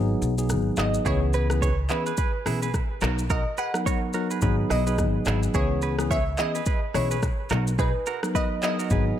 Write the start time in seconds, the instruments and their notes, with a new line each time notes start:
Already playing: upright bass G#1, tine electric piano F#3 B3 D#4 G#4, synth pluck F#5
0.22 upright bass B1, shaker
0.38 tine electric piano F#3 B3 D#4 G#4, shaker
0.50 upright bass G#1, cross-stick, shaker
0.77 upright bass G#1, tine electric piano F#3 B3 D#4 G#4, synth pluck D#5, cross-stick, clap, shaker
0.94 shaker
1.06 upright bass C#2, tine electric piano E3 B3 C#4 G#4, clean electric guitar E4 G#4, synth pluck C#5, kick, shaker
1.33 clean electric guitar G#4 B4, synth pluck B4, shaker
1.50 tine electric piano E3 B3 C#4 G#4, cross-stick, shaker
1.62 clean electric guitar G#4 C#5, kick, shaker
1.89 tine electric piano E3 B3 C#4 G#4, clean electric guitar E4 G#4, synth pluck B4, clap, shaker
2.06 clean electric guitar G#4 B4, shaker
2.17 clean electric guitar G#4 B4, kick, shaker
2.46 upright bass B1, tine electric piano E3 B3 C#4 G#4, clean electric guitar E4 G#4, cross-stick, open hi-hat, shaker
2.62 clean electric guitar G#4 B4, shaker
2.74 kick, cross-stick, shaker
3.01 upright bass B1, tine electric piano F#3 B3 D#4 A#4, clean electric guitar F#4 A#4, cross-stick, clap, shaker
3.19 shaker
3.30 clean electric guitar F#4 A#4, synth pluck D#5, kick, shaker
3.58 clean electric guitar G#4 B4, synth pluck F#5, shaker
3.74 tine electric piano F#3 B3 D#4 A#4, cross-stick, shaker
3.86 clean electric guitar A#4 C#5, kick, shaker
4.13 tine electric piano F#3 B3 D#4 A#4, clean electric guitar F#4 A#4, shaker
4.31 clean electric guitar G#4 B4, shaker
4.42 upright bass G#1, tine electric piano F#3 B3 D#4 G#4, clean electric guitar G#4 B4, kick, shaker
4.70 upright bass B1, clean electric guitar E4 G#4, synth pluck D#5, cross-stick, open hi-hat, shaker
4.87 tine electric piano F#3 B3 D#4 G#4, clean electric guitar G#4 B4, shaker
4.98 upright bass G#1, kick, cross-stick, shaker
5.25 upright bass G#1, tine electric piano F#3 B3 D#4 G#4, clean electric guitar E4 G#4, cross-stick, clap, shaker
5.43 shaker
5.54 upright bass C#2, tine electric piano E3 B3 C#4 G#4, clean electric guitar E4 G#4, synth pluck C#5, kick, shaker
5.82 clean electric guitar G#4 B4, shaker
5.98 tine electric piano E3 B3 C#4 G#4, cross-stick, shaker
6.11 clean electric guitar G#4 C#5, synth pluck E5, kick, shaker
6.38 tine electric piano E3 B3 C#4 G#4, clean electric guitar E4 G#4, synth pluck D#5, clap, shaker
6.55 clean electric guitar G#4 B4, shaker
6.66 clean electric guitar G#4 B4, kick, shaker
6.94 upright bass B1, tine electric piano E3 B3 C#4 G#4, clean electric guitar E4 G#4, synth pluck C#5, cross-stick, open hi-hat, shaker
7.11 clean electric guitar G#4 B4, shaker
7.23 kick, cross-stick, shaker
7.50 upright bass B1, tine electric piano F#3 B3 D#4 A#4, clean electric guitar F#4 A#4, cross-stick, clap, shaker
7.67 shaker
7.79 clean electric guitar D#4 G#4, synth pluck B4, kick, shaker
8.06 clean electric guitar F#4 A#4, shaker
8.23 tine electric piano F#3 B3 D#4 A#4, cross-stick, shaker
8.35 clean electric guitar F#4 B4, synth pluck D#5, kick, shaker
8.62 tine electric piano F#3 B3 D#4 A#4, clean electric guitar E4 G#4, synth pluck D#5, clap, shaker
8.79 clean electric guitar F#4 A#4, shaker
8.90 upright bass G#1, tine electric piano F#3 B3 D#4 G#4, clean electric guitar G#4 B4, kick, shaker